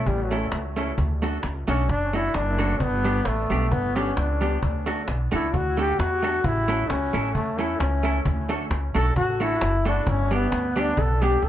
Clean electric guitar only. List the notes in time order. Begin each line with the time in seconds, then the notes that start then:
0.31 A3 C#4 E4 A4
0.77 A3 C#4 E4 A4
1.22 A3 D4 F#4 A4
1.68 A3 D4 F#4 A4
2.13 A3 D4 F#4 A4
2.59 A3 D4 F#4 A4
3.05 G3 B3 D4 G4
3.50 G3 B3 D4 G4
3.96 G3 B3 D4 G4
4.41 G3 B3 D4 G4
4.86 A3 D4 F#4 A4
5.32 A3 D4 F#4 A4
5.77 A3 D4 F#4 A4
6.23 A3 D4 F#4 A4
6.68 A3 C#4 E4 A4
7.13 A3 C#4 E4 A4
7.59 A3 C#4 E4 A4
8.03 A3 C#4 E4 A4
8.49 A3 D4 F#4 A4
8.95 A3 D4 F#4 A4
9.40 A3 D4 F#4 A4
9.85 A3 D4 F#4 A4
10.31 G3 B3 D4 G4
10.76 G3 B3 D4 G4
11.22 G3 B3 D4 G4